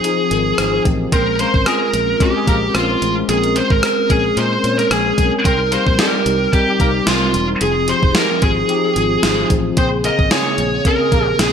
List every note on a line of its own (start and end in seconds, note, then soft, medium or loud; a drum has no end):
0.00 0.04 F3 medium
0.00 0.26 F3 medium
0.00 0.04 C4 medium
0.00 0.04 D#4 medium
0.00 0.05 G#4 loud
0.00 0.81 G#4 medium
0.04 0.26 C4 medium
0.04 0.26 D#4 medium
0.04 0.27 G#4 loud
0.04 closed hi-hat medium
0.31 0.51 G#1 medium
0.31 0.53 F3 medium
0.31 0.53 C4 medium
0.31 0.54 D#4 medium
0.31 0.54 A#4 medium
0.31 closed hi-hat medium
0.58 0.79 G#1 medium
0.58 0.80 F3 medium
0.58 0.80 C4 medium
0.58 0.80 D#4 medium
0.58 0.81 F4 medium
0.58 0.83 G#5 medium
0.58 cross-stick loud
0.58 closed hi-hat medium
0.85 1.06 A1 medium
0.85 1.07 F3 medium
0.85 1.07 C4 medium
0.85 1.07 D#4 medium
0.85 1.08 G4 medium
0.85 1.11 D#5 medium
0.85 kick medium
0.85 closed hi-hat medium
1.12 1.44 A#1 loud
1.12 1.34 G#3 medium
1.12 1.24 C4 medium
1.12 1.34 C4 medium
1.12 1.35 C#4 medium
1.12 1.40 A#4 loud
1.12 1.35 A#4 loud
1.12 1.24 C5 loud
1.12 kick loud
1.12 closed hi-hat loud
1.39 1.61 G#3 medium
1.39 1.51 A#3 medium
1.39 1.61 C4 medium
1.39 1.61 C#4 medium
1.39 1.51 A#4 medium
1.39 1.62 A#4 medium
1.39 1.67 C5 medium
1.39 closed hi-hat medium
1.54 1.63 G#1 medium
1.54 kick medium
1.66 1.88 G#3 medium
1.66 1.89 C4 medium
1.66 1.89 C#4 medium
1.66 1.89 F4 medium
1.66 1.88 G#4 loud
1.66 2.22 A#4 loud
1.66 cross-stick loud
1.66 closed hi-hat medium
1.93 2.14 A#1 medium
1.93 2.15 G#3 medium
1.93 2.16 C4 medium
1.93 2.16 C#4 medium
1.93 2.16 A#4 medium
1.93 closed hi-hat medium
2.20 2.42 G#3 medium
2.20 2.43 C4 medium
2.20 2.43 C#4 medium
2.20 2.75 G4 medium
2.20 2.43 A#4 loud
2.20 kick medium
2.20 closed hi-hat medium
2.35 2.45 G#3 medium
2.35 2.45 G#4 medium
2.47 2.68 A#1 medium
2.47 2.69 G#3 medium
2.47 2.56 A#3 medium
2.47 2.70 C4 medium
2.47 2.70 C#4 medium
2.47 2.56 A#4 medium
2.47 2.70 A#4 medium
2.47 kick medium
2.47 closed hi-hat medium
2.74 2.95 A#1 medium
2.74 2.96 G#3 medium
2.74 2.97 C4 medium
2.74 2.97 C#4 medium
2.74 3.14 F4 medium
2.74 2.97 C5 medium
2.74 cross-stick loud
2.74 closed hi-hat medium
3.01 3.22 A1 medium
3.01 3.23 G#3 medium
3.01 3.24 C4 medium
3.01 3.24 C#4 medium
3.01 3.24 A#4 medium
3.01 closed hi-hat medium
3.28 3.60 A#1 loud
3.28 3.50 G#3 medium
3.28 3.50 C4 medium
3.28 3.51 C#4 medium
3.28 3.57 G#4 medium
3.28 3.51 A#4 medium
3.28 closed hi-hat loud
3.44 closed hi-hat medium
3.55 3.77 G#3 medium
3.55 3.78 C4 medium
3.55 3.78 C#4 medium
3.55 3.78 A#4 medium
3.55 3.71 C5 medium
3.55 closed hi-hat medium
3.70 3.80 G#1 medium
3.70 4.10 A#4 medium
3.70 kick medium
3.82 4.05 G#3 medium
3.82 4.05 C4 medium
3.82 4.05 C#4 medium
3.82 4.05 A#4 medium
3.82 cross-stick loud
3.82 closed hi-hat medium
4.10 4.30 A#1 medium
4.10 4.32 G#3 medium
4.10 4.32 C4 medium
4.10 4.32 C#4 medium
4.10 4.38 G#4 medium
4.10 4.32 A#4 medium
4.10 kick medium
4.10 closed hi-hat medium
4.36 4.57 A#2 medium
4.36 4.58 G#3 medium
4.36 4.59 C4 medium
4.36 4.59 C#4 medium
4.36 4.59 A#4 loud
4.36 4.78 C5 loud
4.36 closed hi-hat medium
4.63 4.84 A#2 medium
4.63 4.85 G#3 medium
4.63 4.86 C4 medium
4.63 4.86 C#4 medium
4.63 4.86 C#5 medium
4.63 closed hi-hat medium
4.79 4.91 A#4 medium
4.79 closed hi-hat soft
4.91 5.11 A#1 medium
4.91 5.13 G#3 medium
4.91 5.13 C4 medium
4.91 5.13 C#4 medium
4.91 5.30 G#4 medium
4.91 5.13 A#4 medium
4.91 cross-stick loud
4.91 closed hi-hat medium
5.18 5.29 B1 medium
5.18 5.40 G#3 medium
5.18 5.40 C4 medium
5.18 5.40 C#4 medium
5.18 5.40 A#4 medium
5.18 kick medium
5.18 closed hi-hat medium
5.45 5.76 C2 loud
5.45 5.67 G3 medium
5.45 5.57 C4 medium
5.45 5.67 C4 medium
5.45 5.67 D#4 medium
5.45 5.73 A#4 medium
5.45 5.67 A#4 loud
5.45 5.57 C5 loud
5.45 kick loud
5.45 closed hi-hat loud
5.72 5.94 G3 medium
5.72 5.84 A#3 medium
5.72 5.94 C4 medium
5.72 5.94 D#4 medium
5.72 5.94 G4 medium
5.72 5.84 A#4 medium
5.72 5.97 C5 medium
5.72 closed hi-hat medium
5.87 5.96 A#1 medium
5.87 kick medium
5.98 6.21 G3 medium
5.98 6.20 G3 loud
5.98 6.21 C4 medium
5.98 6.21 D#4 medium
5.98 6.20 G4 loud
5.98 6.21 G4 medium
5.98 6.53 A#4 medium
5.98 snare loud
5.98 closed hi-hat medium
6.25 6.46 C2 medium
6.25 6.48 G3 medium
6.25 6.48 C4 medium
6.25 6.48 D#4 medium
6.25 6.48 G4 medium
6.25 closed hi-hat medium
6.53 6.75 G3 medium
6.53 6.75 C4 medium
6.53 6.75 D#4 medium
6.53 7.09 G4 medium
6.53 6.75 A#4 loud
6.53 kick medium
6.53 closed hi-hat medium
6.67 6.77 G3 medium
6.67 6.77 G4 medium
6.80 7.00 C2 medium
6.80 7.02 G3 medium
6.80 6.89 A#3 medium
6.80 7.02 C4 medium
6.80 7.02 D#4 medium
6.80 6.89 A#4 medium
6.80 7.02 A#4 medium
6.80 kick medium
6.80 closed hi-hat medium
7.06 7.35 C2 medium
7.06 7.29 G3 medium
7.06 7.29 C4 medium
7.06 7.29 D#4 medium
7.06 7.46 F4 medium
7.06 7.29 C5 medium
7.06 snare loud
7.06 closed hi-hat medium
7.33 7.54 E1 medium
7.33 7.56 G3 medium
7.33 7.56 C4 medium
7.33 7.56 D#4 medium
7.33 7.56 A#4 medium
7.33 closed hi-hat medium
7.61 7.92 F1 medium
7.61 7.83 F3 medium
7.61 7.83 C4 medium
7.61 7.83 D#4 medium
7.61 7.83 G#4 loud
7.61 7.89 G#4 medium
7.61 closed hi-hat loud
7.87 8.10 F3 medium
7.87 8.10 C4 medium
7.87 8.10 D#4 medium
7.87 8.10 G4 medium
7.87 8.16 C5 medium
7.87 closed hi-hat medium
8.03 8.12 F1 medium
8.03 kick medium
8.15 8.37 F3 medium
8.15 8.37 C4 medium
8.15 8.37 D#4 medium
8.15 8.37 G4 medium
8.15 8.43 A#4 medium
8.15 snare loud
8.15 closed hi-hat medium
8.42 8.62 G#1 medium
8.42 8.64 F3 medium
8.42 8.64 C4 medium
8.42 8.64 D#4 medium
8.42 8.64 G#4 medium
8.42 9.47 G#4 medium
8.42 kick medium
8.42 closed hi-hat medium
8.69 8.91 F3 medium
8.69 8.91 C4 medium
8.69 8.91 D#4 medium
8.69 8.91 G4 loud
8.69 closed hi-hat medium
8.95 9.16 G#1 medium
8.95 9.18 F3 medium
8.95 9.18 C4 medium
8.95 9.18 D#4 medium
8.95 9.19 F4 medium
8.95 closed hi-hat medium
9.23 9.43 G#1 medium
9.23 9.45 F3 medium
9.23 9.45 C4 medium
9.23 9.45 D#4 medium
9.23 9.45 F4 medium
9.23 snare loud
9.23 closed hi-hat medium
9.50 9.70 A1 medium
9.50 9.72 F3 medium
9.50 9.72 C4 medium
9.50 9.72 D#4 medium
9.50 9.73 G#4 medium
9.50 kick medium
9.50 closed hi-hat medium
9.76 10.09 A#1 loud
9.76 9.99 C#3 medium
9.76 9.99 A#3 medium
9.76 9.89 C4 medium
9.76 9.99 C4 medium
9.76 10.00 G#4 loud
9.76 9.89 C5 loud
9.76 9.85 C5 medium
9.76 kick loud
9.76 closed hi-hat loud
10.04 10.26 C#3 medium
10.04 10.16 A#3 medium
10.04 10.26 A#3 medium
10.04 10.26 C4 medium
10.04 10.27 G#4 medium
10.04 10.16 A#4 medium
10.04 10.30 D#5 medium
10.04 closed hi-hat medium
10.19 10.28 G#1 medium
10.19 kick medium
10.31 10.53 C#3 medium
10.31 10.53 G#3 loud
10.31 10.53 A#3 medium
10.31 10.54 C4 medium
10.31 10.53 G#4 loud
10.31 10.54 G#4 medium
10.31 10.87 C#5 medium
10.31 snare loud
10.31 closed hi-hat medium
10.58 10.78 A#1 medium
10.58 10.80 C#3 medium
10.58 10.80 A#3 medium
10.58 10.81 C4 medium
10.58 10.81 G#4 medium
10.58 closed hi-hat medium
10.85 11.07 C#3 medium
10.85 11.07 A#3 medium
10.85 11.08 C4 medium
10.85 11.08 A#4 loud
10.85 11.40 A#4 medium
10.85 kick medium
10.85 closed hi-hat medium
11.00 11.10 G#3 medium
11.00 11.10 G#4 medium
11.12 11.32 A#1 medium
11.12 11.34 C#3 medium
11.12 11.24 A#3 medium
11.12 11.34 A#3 medium
11.12 11.34 C4 medium
11.12 11.35 G4 medium
11.12 11.24 A#4 medium
11.12 kick medium
11.12 closed hi-hat medium
11.39 11.53 A#1 medium
11.39 11.53 C#3 medium
11.39 11.53 A#3 medium
11.39 11.53 C4 medium
11.39 11.53 G#4 medium
11.39 snare loud
11.39 closed hi-hat medium